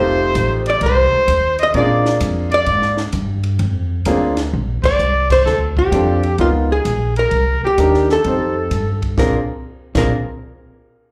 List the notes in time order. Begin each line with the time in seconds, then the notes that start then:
Already playing: F1 A3 C4 D#4 F4 G4 C5
0.35 A1, kick, hi-hat pedal, ride
0.66 D5, ride
0.81 C2 C5, kick, ride
0.86 C5
1.13 muted upright bass stroke
1.28 D#2, kick, hi-hat pedal, ride
1.59 D#5, ride
1.63 D#5
1.74 A#2 A#3 C4 D4 F4 G#4 D5, kick, ride
2.06 snare
2.20 F2, kick, hi-hat pedal, ride
2.51 D5, ride
2.66 G#2, kick, ride
2.82 snare
2.97 snare
3.12 G2, kick, hi-hat pedal, ride
3.43 ride
3.59 F2, kick, ride
4.05 D2 A#3 C4 D4 F4 G#4, kick, hi-hat pedal, ride
4.37 snare, ride
4.53 A#1
4.83 D5, muted upright bass stroke, kick, crash
4.99 C2, hi-hat pedal
5.30 C5, kick, crash
5.46 D2 A4, snare
5.77 G4, kick
5.92 F2 C4 D4 F4 A4, kick, hi-hat pedal, ride
6.23 ride
6.38 C#2 B3 D#4 F4 A#4, kick, ride
6.72 G#4
6.85 A#1, kick, hi-hat pedal, ride
7.16 A#4, ride
7.31 C2, kick, ride
7.63 G4, muted upright bass stroke
7.78 D#2 D4 D#4 G4 A#4, kick, hi-hat pedal, ride
7.94 snare
8.09 A4, snare
8.24 F2 C4 D#4 G4 C5, kick, ride
8.71 G2, kick, hi-hat pedal, ride
9.02 kick, ride
9.17 A#1 A#3 C4 D4 F4 G#4 A#4, kick, snare
9.95 A#1 A#3 C4 D4 F4 G#4 A#4, kick, snare, crash